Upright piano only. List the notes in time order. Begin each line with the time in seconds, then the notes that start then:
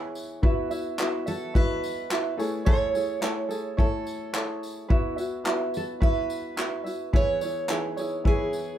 Already playing: E3 B3 E4 G#4 C#5
0.42 B3 E4 F4 E5
0.50 F#4
0.98 B3 E4 F#4 E5
1.54 B3 E4 F#4 D#5
1.62 E5
2.37 A3 E4 G#4 C#5
3.21 A3 E4 G#4 C#5
3.77 A3 E4 C#5 G#5
4.90 B3 E4 F#4 E5
5.45 B3 E4 F4 E5
5.53 F#4
6.01 B3 E4 F#4 E5
7.13 E3 B3 E4 G#4 C#5
7.70 E3 B3 D#4 G#4 C#5
7.77 E4
8.24 E3 B3 E4 G#4 C#5